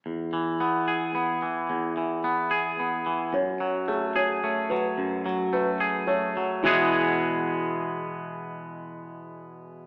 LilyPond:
<<
  \new Staff \with { instrumentName = "Felt piano" } { \time 3/4 \key e \major \tempo 4 = 109 r2. | r2. | cis''4 gis'8 cis''4 b'8~ | b'8 r8 b'4 cis''4 |
e'8 r2 r8 | r2. | }
  \new Staff \with { instrumentName = "Clean electric guitar" } { \clef bass \time 3/4 \key e \major e,8 e8 b8 gis'8 b8 e8 | e,8 e8 b8 gis'8 b8 e8 | fis,8 fis8 a8 gis'8 a8 fis8 | fis,8 fis8 a8 gis'8 a8 fis8 |
<e, b, e gis b gis'>2.~ | <e, b, e gis b gis'>2. | }
>>